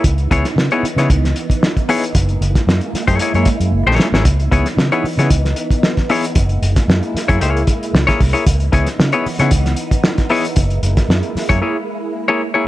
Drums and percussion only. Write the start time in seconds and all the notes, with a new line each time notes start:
0.04 kick, closed hi-hat
0.18 closed hi-hat
0.31 kick, closed hi-hat
0.45 snare, closed hi-hat
0.58 snare
0.71 closed hi-hat
0.85 closed hi-hat
0.98 snare, closed hi-hat
1.10 kick, closed hi-hat
1.25 snare, closed hi-hat
1.36 closed hi-hat
1.50 kick, closed hi-hat
1.63 snare
1.77 kick, closed hi-hat
1.89 open hi-hat
2.04 closed hi-hat
2.15 kick, closed hi-hat
2.29 closed hi-hat
2.42 closed hi-hat
2.55 kick, snare, closed hi-hat
2.69 snare
2.81 closed hi-hat
2.95 snare, closed hi-hat
3.08 kick, closed hi-hat
3.19 closed hi-hat
3.34 closed hi-hat
3.45 kick, closed hi-hat
3.61 closed hi-hat
4.00 snare
4.14 snare
4.25 kick, closed hi-hat
4.39 closed hi-hat
4.52 kick, closed hi-hat
4.66 snare, closed hi-hat
4.79 snare
4.92 closed hi-hat
5.05 open hi-hat
5.19 snare, closed hi-hat
5.30 kick, closed hi-hat
5.45 snare, closed hi-hat
5.56 closed hi-hat
5.71 kick, closed hi-hat
5.83 snare
5.97 kick, snare, closed hi-hat
6.09 open hi-hat
6.24 closed hi-hat
6.35 kick, closed hi-hat
6.49 closed hi-hat
6.63 closed hi-hat
6.76 kick, snare, closed hi-hat
6.90 snare
7.03 closed hi-hat
7.17 snare, closed hi-hat
7.29 kick, closed hi-hat
7.41 closed hi-hat
7.57 closed hi-hat
7.67 kick, closed hi-hat
7.83 closed hi-hat
7.95 snare
8.09 kick, snare, closed hi-hat
8.21 kick, open hi-hat
8.35 closed hi-hat
8.46 kick, closed hi-hat
8.60 closed hi-hat
8.73 kick, closed hi-hat
8.86 snare, closed hi-hat
9.00 snare
9.12 closed hi-hat
9.26 open hi-hat
9.39 snare, closed hi-hat
9.51 kick, closed hi-hat
9.66 snare, closed hi-hat
9.76 closed hi-hat
9.91 kick, closed hi-hat
10.04 snare
10.18 kick, snare, closed hi-hat
10.29 open hi-hat
10.45 closed hi-hat
10.56 kick, closed hi-hat
10.70 closed hi-hat
10.83 closed hi-hat
10.97 kick, snare, closed hi-hat
11.10 snare
11.23 closed hi-hat
11.37 snare, open hi-hat
11.50 kick, closed hi-hat